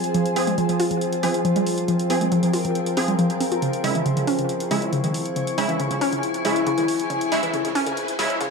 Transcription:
0.00 8.50 F3 medium
0.00 8.50 C4 medium
0.00 3.62 F4 medium
0.00 8.50 G#4 medium
0.00 1.09 C5 medium
0.00 1.32 G#5 medium
0.00 closed hi-hat medium
0.14 0.20 F3 medium
0.14 closed hi-hat medium
0.26 closed hi-hat medium
0.36 0.57 F3 medium
0.36 0.57 C4 medium
0.36 0.57 G#4 medium
0.36 open hi-hat loud
0.47 0.55 G#3 medium
0.47 closed hi-hat medium
0.58 0.64 F3 loud
0.58 closed hi-hat medium
0.69 0.74 F3 medium
0.69 closed hi-hat medium
0.80 0.85 F4 loud
0.80 open hi-hat loud
0.91 0.99 F3 medium
0.91 closed hi-hat medium
0.96 4.61 A#4 medium
1.01 closed hi-hat medium
1.13 closed hi-hat medium
1.19 3.62 G5 medium
1.23 1.44 F3 medium
1.23 1.29 F3 medium
1.23 1.44 C4 medium
1.23 1.44 G#4 medium
1.23 open hi-hat loud
1.34 closed hi-hat medium
1.45 1.50 F3 loud
1.45 closed hi-hat medium
1.56 1.61 G3 medium
1.56 closed hi-hat medium
1.67 open hi-hat loud
1.78 closed hi-hat medium
1.88 1.94 F3 medium
1.88 closed hi-hat medium
1.99 closed hi-hat medium
2.10 2.31 F3 medium
2.10 2.31 C4 medium
2.10 2.31 G#4 medium
2.10 open hi-hat loud
2.21 2.29 G#3 medium
2.21 closed hi-hat medium
2.32 2.37 F3 loud
2.32 closed hi-hat medium
2.43 2.48 F3 medium
2.43 closed hi-hat medium
2.53 2.59 F4 loud
2.53 open hi-hat loud
2.65 2.73 F3 medium
2.65 closed hi-hat medium
2.75 closed hi-hat medium
2.86 closed hi-hat medium
2.97 3.18 F3 medium
2.97 3.18 C4 medium
2.97 3.03 C4 medium
2.97 3.18 G#4 medium
2.97 open hi-hat loud
3.08 3.13 G3 medium
3.08 closed hi-hat medium
3.19 3.24 F3 loud
3.19 closed hi-hat medium
3.30 closed hi-hat medium
3.40 3.49 C4 medium
3.40 open hi-hat loud
3.52 3.60 F4 medium
3.52 closed hi-hat medium
3.62 3.68 C#3 medium
3.62 8.50 E4 medium
3.62 closed hi-hat medium
3.62 riser medium
3.73 closed hi-hat medium
3.84 4.05 C#3 medium
3.84 4.05 G#3 medium
3.84 4.05 E4 medium
3.84 7.64 C#6 loud
3.84 open hi-hat loud
3.95 4.03 E3 medium
3.95 closed hi-hat medium
4.06 4.11 C#3 loud
4.06 closed hi-hat medium
4.17 4.22 C#3 medium
4.17 closed hi-hat medium
4.27 4.33 C#4 loud
4.27 open hi-hat loud
4.33 8.50 G#5 medium
4.39 4.47 C#3 medium
4.39 closed hi-hat medium
4.49 closed hi-hat medium
4.60 closed hi-hat medium
4.71 4.92 C#3 medium
4.71 4.77 C#3 medium
4.71 4.92 G#3 medium
4.71 4.92 E4 medium
4.71 open hi-hat loud
4.82 closed hi-hat medium
4.93 4.98 C#3 loud
4.93 closed hi-hat medium
5.04 5.09 D#3 medium
5.04 closed hi-hat medium
5.14 open hi-hat loud
5.25 closed hi-hat medium
5.36 5.42 C#3 medium
5.36 closed hi-hat medium
5.47 closed hi-hat medium
5.58 5.79 C#3 medium
5.58 5.78 G#3 medium
5.58 5.79 E4 loud
5.58 open hi-hat loud
5.69 5.77 E3 medium
5.69 closed hi-hat medium
5.80 5.85 C#3 loud
5.80 closed hi-hat medium
5.91 5.96 C#3 medium
5.91 closed hi-hat medium
6.01 6.07 C#4 loud
6.01 open hi-hat loud
6.12 6.20 C#3 medium
6.12 closed hi-hat medium
6.23 closed hi-hat medium
6.34 closed hi-hat medium
6.45 6.50 C#3 medium
6.45 6.65 C#3 medium
6.45 6.66 G#3 medium
6.45 6.65 E4 medium
6.45 open hi-hat loud
6.56 closed hi-hat medium
6.67 6.72 C#3 loud
6.67 closed hi-hat medium
6.78 6.83 D#3 medium
6.78 closed hi-hat medium
6.88 open hi-hat loud
6.99 closed hi-hat medium
7.10 7.16 C#3 medium
7.10 closed hi-hat medium
7.21 closed hi-hat medium
7.32 7.52 C#3 medium
7.32 7.52 G#3 medium
7.32 7.52 E4 loud
7.32 open hi-hat loud
7.43 7.51 E3 medium
7.43 closed hi-hat medium
7.51 7.59 C#3 loud
7.51 8.50 D#5 loud
7.51 closed hi-hat medium
7.65 7.70 C#3 medium
7.65 closed hi-hat medium
7.75 7.81 C#4 loud
7.75 open hi-hat loud
7.86 7.94 C#3 medium
7.86 closed hi-hat medium
7.97 closed hi-hat medium
8.08 closed hi-hat medium
8.19 8.39 C#3 medium
8.19 8.24 C#3 medium
8.19 8.39 G#3 medium
8.19 8.39 E4 medium
8.19 open hi-hat loud
8.30 closed hi-hat medium
8.41 8.46 C#3 loud
8.41 closed hi-hat medium

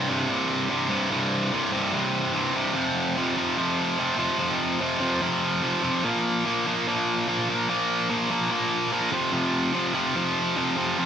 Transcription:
0.08 0.27 C2 medium
0.08 0.28 G2 loud
0.08 0.28 C3 medium
0.28 0.68 C2 medium
0.28 0.69 G2 loud
0.28 0.69 C3 loud
0.69 0.88 C2 medium
0.69 0.89 G2 loud
0.69 0.89 C3 loud
0.90 1.09 C2 medium
0.90 1.10 G2 loud
0.90 1.10 C3 loud
1.11 1.51 C2 medium
1.11 1.52 G2 medium
1.11 1.52 C3 loud
1.52 1.71 C2 medium
1.52 1.72 G2 loud
1.52 1.72 C3 loud
1.73 1.91 C2 medium
1.73 1.92 G2 loud
1.73 1.92 C3 medium
1.92 2.33 C2 medium
1.92 2.33 G2 loud
1.92 2.34 C3 loud
2.34 2.54 C2 medium
2.34 2.54 G2 medium
2.34 2.55 C3 medium
2.55 2.74 C2 medium
2.55 2.75 G2 loud
2.55 2.74 C3 loud
2.75 3.17 F2 medium
2.75 3.16 C3 loud
2.75 3.17 F3 loud
3.17 3.36 F2 medium
3.17 3.36 C3 medium
3.17 3.37 F3 medium
3.36 3.56 F2 medium
3.36 3.56 C3 medium
3.36 3.58 F3 loud
3.57 3.97 F2 loud
3.57 3.98 C3 loud
3.57 3.99 F3 loud
3.98 4.17 F2 medium
3.98 4.17 C3 medium
3.98 4.19 F3 medium
4.18 4.38 F2 loud
4.18 4.38 C3 loud
4.18 4.39 F3 loud
4.39 4.79 F2 medium
4.39 4.80 C3 medium
4.39 4.81 F3 loud
4.81 4.99 F2 medium
4.81 5.00 C3 medium
4.81 5.01 F3 medium
5.00 5.20 F2 medium
5.00 5.21 C3 medium
5.00 5.22 F3 loud
5.21 5.61 F2 loud
5.21 5.62 C3 loud
5.21 5.62 F3 loud
5.62 5.82 F2 medium
5.62 5.82 C3 medium
5.62 5.84 F3 medium
5.83 6.03 F2 medium
5.83 6.03 C3 medium
5.83 6.04 F3 loud
6.04 6.45 A#2 medium
6.04 6.45 F3 loud
6.04 6.46 A#3 medium
6.45 6.65 A#2 medium
6.45 6.66 F3 medium
6.45 6.66 A#3 medium
6.66 6.86 A#2 medium
6.66 6.87 F3 medium
6.66 6.87 A#3 loud
6.87 7.26 A#2 loud
6.87 7.28 F3 loud
6.87 7.27 A#3 loud
7.28 7.48 A#2 medium
7.28 7.49 F3 medium
7.28 7.48 A#3 medium
7.49 7.67 A#2 medium
7.49 7.69 F3 loud
7.49 7.68 A#3 loud
7.68 8.08 A#2 medium
7.68 8.09 F3 medium
7.68 8.09 A#3 loud
8.09 8.29 A#2 loud
8.09 8.29 F3 medium
8.09 8.29 A#3 loud
8.30 8.49 A#2 medium
8.30 8.50 F3 medium
8.30 8.50 A#3 medium
8.51 8.90 A#2 loud
8.51 8.92 F3 loud
8.51 8.92 A#3 loud
8.92 9.11 A#2 medium
8.92 9.11 F3 medium
8.92 9.11 A#3 medium
9.11 9.32 F2 loud
9.11 9.32 C3 loud
9.11 9.33 F3 loud
9.32 9.73 F2 medium
9.32 9.73 C3 loud
9.32 9.74 F3 medium
9.73 9.94 F2 medium
9.73 9.94 C3 medium
9.73 9.94 F3 medium
9.94 10.14 F2 medium
9.94 10.15 C3 medium
9.94 10.15 F3 loud
10.16 10.55 F2 loud
10.16 10.56 C3 loud
10.16 10.56 F3 loud
10.56 10.76 F2 medium
10.56 10.76 C3 medium
10.56 10.76 F3 medium
10.77 10.97 F2 loud
10.77 10.98 C3 loud
10.77 10.98 F3 loud
10.98 11.06 F2 loud
10.98 11.06 C3 loud
10.98 11.06 F3 loud

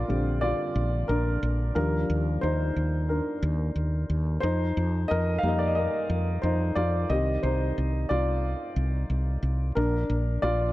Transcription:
0.00 1.10 D4 medium
0.00 0.39 F4 medium
0.00 1.08 A#4 medium
0.00 0.38 D5 medium
0.08 0.52 A#1 medium
0.08 0.54 D3 soft
0.08 0.55 G3 soft
0.08 0.55 C4 medium
0.41 1.06 F4 medium
0.41 1.04 D5 medium
0.76 1.03 A#1 medium
1.08 1.36 A#1 medium
1.08 1.72 D4 medium
1.08 1.74 A#4 medium
1.43 1.70 A#1 medium
1.75 2.03 D#2 medium
1.75 2.72 F3 soft
1.75 2.72 G3 soft
1.75 2.72 D4 medium
1.75 2.38 A#4 medium
2.10 2.37 D#2 medium
2.41 2.70 D#2 medium
2.41 3.06 D#4 medium
2.41 3.11 C5 medium
2.76 3.19 D#2 medium
3.09 3.72 D4 soft
3.09 3.72 A#4 medium
3.43 3.70 D#2 medium
3.76 4.03 D#2 medium
4.10 4.37 D#2 medium
4.40 4.71 F2 medium
4.40 5.06 D#4 medium
4.40 5.04 C5 medium
4.77 5.04 F2 medium
5.08 5.38 F2 medium
5.08 5.39 A#4 medium
5.08 5.37 D#5 medium
5.38 5.49 F5 medium
5.43 5.86 F2 medium
5.43 7.06 G3 soft
5.43 7.06 A#3 soft
5.43 6.42 D#4 medium
5.48 5.59 D#5 medium
5.59 5.68 D5 medium
5.67 5.74 D#5 medium
5.75 6.40 A#4 medium
5.75 6.39 D#5 medium
6.10 6.37 F2 medium
6.42 6.71 F2 medium
6.42 6.74 D#4 medium
6.42 6.77 C5 medium
6.75 7.04 F2 medium
6.75 7.08 F4 medium
6.75 7.10 D5 medium
7.10 7.37 C2 medium
7.10 9.73 D#3 soft
7.10 9.73 C4 soft
7.10 7.42 G4 medium
7.10 7.44 D#5 medium
7.43 7.71 C2 medium
7.43 8.07 D#4 medium
7.43 8.12 C5 medium
7.78 8.05 C2 medium
8.09 8.53 C2 medium
8.09 9.40 F4 medium
8.09 9.39 D5 medium
8.76 9.04 C2 medium
9.10 9.37 C2 medium
9.43 9.70 C2 medium
9.75 10.04 A#1 medium
9.75 10.40 D4 medium
9.75 10.45 A#4 medium
10.10 10.37 A#1 medium
10.42 10.71 A#1 medium
10.42 10.73 F4 medium
10.42 10.73 D5 medium

